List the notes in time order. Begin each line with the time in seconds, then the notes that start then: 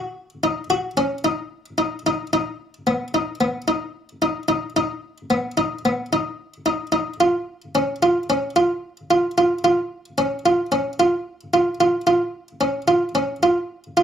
Already playing: F#4
0.44 D#4
0.70 F#4
0.97 C#4
1.24 D#4
1.78 D#4
2.06 D#4
2.33 D#4
2.87 B3
3.14 D#4
3.41 B3
3.68 D#4
4.22 D#4
4.48 D#4
4.76 D#4
5.30 B3
5.57 D#4
5.85 B3
6.13 D#4
6.66 D#4
6.92 D#4
7.20 F4
7.75 C#4
8.03 F4
8.30 C#4
8.56 F4
9.11 F4
9.38 F4
9.64 F4
10.18 C#4
10.46 F4
10.72 C#4
11.00 F4
11.54 F4
11.80 F4
12.07 F4
12.61 C#4
12.88 F4
13.15 C#4
13.43 F4
13.97 F4